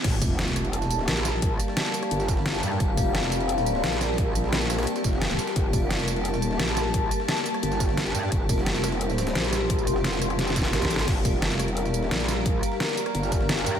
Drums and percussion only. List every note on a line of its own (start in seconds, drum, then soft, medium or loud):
0.04 kick loud
0.04 closed hi-hat loud
0.04 closed hi-hat medium
0.04 crash loud
0.22 kick loud
0.22 closed hi-hat medium
0.22 open hi-hat medium
0.22 tambourine medium
0.39 snare loud
0.39 closed hi-hat loud
0.39 closed hi-hat medium
0.47 snare medium
0.47 tambourine soft
0.56 cross-stick soft
0.56 closed hi-hat medium
0.56 tambourine medium
0.65 closed hi-hat soft
0.73 closed hi-hat medium
0.82 snare medium
0.82 tambourine soft
0.91 closed hi-hat medium
0.91 tambourine medium
0.99 snare soft
1.08 snare loud
1.08 closed hi-hat loud
1.08 closed hi-hat medium
1.16 snare soft
1.16 tambourine soft
1.25 snare soft
1.25 snare medium
1.25 closed hi-hat medium
1.25 tambourine medium
1.42 kick loud
1.42 closed hi-hat loud
1.42 closed hi-hat medium
1.60 closed hi-hat medium
1.60 tambourine medium
1.68 snare soft
1.77 snare loud
1.77 closed hi-hat medium
1.85 tambourine soft
1.94 closed hi-hat medium
1.94 tambourine medium
2.03 cross-stick medium
2.03 closed hi-hat soft
2.11 closed hi-hat medium
2.20 snare medium
2.20 tambourine soft
2.28 kick loud
2.28 snare medium
2.28 closed hi-hat medium
2.28 tambourine medium
2.37 snare medium
2.46 snare loud
2.46 closed hi-hat loud
2.46 closed hi-hat medium
2.54 snare soft
2.54 tambourine soft
2.63 snare soft
2.63 closed hi-hat medium
2.63 tambourine medium
2.72 snare medium
2.80 kick loud
2.80 closed hi-hat medium
2.97 kick loud
2.97 closed hi-hat medium
2.97 open hi-hat medium
2.97 tambourine medium
3.15 snare loud
3.15 closed hi-hat medium
3.23 snare medium
3.23 tambourine soft
3.32 closed hi-hat medium
3.32 tambourine medium
3.41 closed hi-hat soft
3.49 closed hi-hat medium
3.58 snare medium
3.58 tambourine soft
3.66 closed hi-hat medium
3.66 tambourine medium
3.75 snare soft
3.84 snare loud
3.84 closed hi-hat medium
3.92 snare soft
3.92 tambourine soft
4.01 snare soft
4.01 closed hi-hat medium
4.01 tambourine medium
4.18 kick loud
4.18 closed hi-hat medium
4.35 closed hi-hat medium
4.35 tambourine medium
4.44 snare soft
4.53 snare loud
4.53 closed hi-hat medium
4.61 closed hi-hat soft
4.61 tambourine soft
4.70 cross-stick soft
4.70 snare loud
4.70 closed hi-hat medium
4.70 tambourine medium
4.78 cross-stick medium
4.78 snare medium
4.78 closed hi-hat soft
4.78 closed hi-hat medium
4.83 snare medium
4.83 closed hi-hat medium
4.87 closed hi-hat medium
4.96 snare medium
4.96 closed hi-hat soft
4.96 tambourine soft
5.04 kick loud
5.04 snare soft
5.04 closed hi-hat medium
5.04 tambourine medium
5.13 snare soft
5.22 snare loud
5.22 closed hi-hat medium
5.30 snare soft
5.30 tambourine soft
5.39 snare loud
5.39 closed hi-hat medium
5.39 tambourine medium
5.47 snare loud
5.47 closed hi-hat medium
5.56 kick loud
5.56 closed hi-hat medium
5.73 kick loud
5.73 closed hi-hat medium
5.73 open hi-hat medium
5.73 tambourine medium
5.91 snare loud
5.91 closed hi-hat medium
5.99 snare medium
5.99 tambourine soft
6.08 cross-stick soft
6.08 closed hi-hat medium
6.08 tambourine medium
6.16 closed hi-hat soft
6.25 closed hi-hat medium
6.34 snare medium
6.34 tambourine soft
6.42 closed hi-hat medium
6.42 tambourine medium
6.51 snare soft
6.59 snare loud
6.59 closed hi-hat medium
6.68 snare soft
6.68 tambourine soft
6.77 snare soft
6.77 closed hi-hat medium
6.77 tambourine medium
6.94 kick loud
6.94 closed hi-hat loud
6.94 closed hi-hat medium
7.11 closed hi-hat medium
7.11 tambourine medium
7.20 snare soft
7.28 snare loud
7.28 closed hi-hat medium
7.37 tambourine soft
7.46 closed hi-hat medium
7.46 tambourine medium
7.54 cross-stick medium
7.54 closed hi-hat soft
7.63 closed hi-hat medium
7.72 snare medium
7.72 tambourine soft
7.80 kick loud
7.80 snare soft
7.80 closed hi-hat medium
7.80 tambourine medium
7.89 snare soft
7.97 snare loud
7.97 closed hi-hat medium
8.06 snare soft
8.06 tambourine soft
8.15 snare soft
8.15 closed hi-hat medium
8.15 tambourine medium
8.23 snare medium
8.32 kick loud
8.32 closed hi-hat loud
8.32 closed hi-hat medium
8.49 kick loud
8.49 closed hi-hat medium
8.49 open hi-hat medium
8.49 tambourine medium
8.58 snare soft
8.66 snare loud
8.66 closed hi-hat medium
8.75 snare medium
8.75 tambourine soft
8.84 cross-stick soft
8.84 snare loud
8.84 closed hi-hat medium
8.84 tambourine medium
8.92 snare soft
8.92 closed hi-hat soft
9.01 closed hi-hat medium
9.10 snare medium
9.10 tambourine soft
9.18 snare loud
9.18 closed hi-hat medium
9.18 tambourine medium
9.27 snare loud
9.27 closed hi-hat medium
9.35 snare loud
9.35 closed hi-hat loud
9.35 closed hi-hat medium
9.44 snare soft
9.44 tambourine soft
9.53 snare soft
9.53 closed hi-hat medium
9.53 tambourine medium
9.70 kick loud
9.70 closed hi-hat loud
9.70 closed hi-hat medium
9.78 tambourine soft
9.87 closed hi-hat medium
9.87 tambourine medium
9.96 snare soft
10.04 snare loud
10.04 closed hi-hat loud
10.04 closed hi-hat medium
10.13 tambourine soft
10.22 cross-stick soft
10.22 closed hi-hat medium
10.22 tambourine medium
10.30 cross-stick medium
10.30 closed hi-hat soft
10.39 snare medium
10.39 closed hi-hat loud
10.39 closed hi-hat medium
10.47 snare medium
10.47 closed hi-hat soft
10.47 tambourine soft
10.56 kick loud
10.56 snare loud
10.56 closed hi-hat medium
10.56 tambourine medium
10.62 snare medium
10.65 snare loud
10.65 closed hi-hat medium
10.73 snare medium
10.73 snare loud
10.73 closed hi-hat medium
10.82 kick medium
10.82 snare loud
10.82 closed hi-hat soft
10.82 closed hi-hat medium
10.82 tambourine soft
10.85 snare loud
10.90 snare loud
10.90 closed hi-hat medium
10.90 tambourine medium
10.96 snare loud
10.99 snare loud
10.99 closed hi-hat medium
11.08 kick loud
11.08 closed hi-hat loud
11.08 closed hi-hat medium
11.08 crash medium
11.25 kick loud
11.25 closed hi-hat medium
11.25 open hi-hat medium
11.25 tambourine medium
11.42 snare loud
11.42 closed hi-hat medium
11.51 snare medium
11.51 tambourine soft
11.59 cross-stick medium
11.59 closed hi-hat medium
11.59 tambourine medium
11.68 closed hi-hat soft
11.77 closed hi-hat medium
11.85 snare medium
11.85 tambourine soft
11.94 closed hi-hat medium
11.94 tambourine medium
12.03 snare soft
12.11 snare loud
12.11 closed hi-hat loud
12.11 closed hi-hat medium
12.20 snare soft
12.20 tambourine soft
12.28 snare soft
12.28 closed hi-hat medium
12.28 open hi-hat medium
12.28 tambourine medium
12.46 kick loud
12.46 closed hi-hat medium
12.63 closed hi-hat medium
12.63 tambourine medium
12.72 snare soft
12.80 snare loud
12.80 closed hi-hat medium
12.89 tambourine soft
12.97 closed hi-hat medium
12.97 tambourine medium
13.06 cross-stick medium
13.06 closed hi-hat soft
13.15 closed hi-hat medium
13.23 snare medium
13.23 tambourine soft
13.32 kick loud
13.32 snare soft
13.32 closed hi-hat medium
13.32 tambourine medium
13.41 snare soft
13.49 snare loud
13.49 closed hi-hat medium
13.58 snare soft
13.58 tambourine soft
13.66 snare soft
13.66 closed hi-hat medium
13.66 open hi-hat medium
13.66 tambourine medium
13.75 snare medium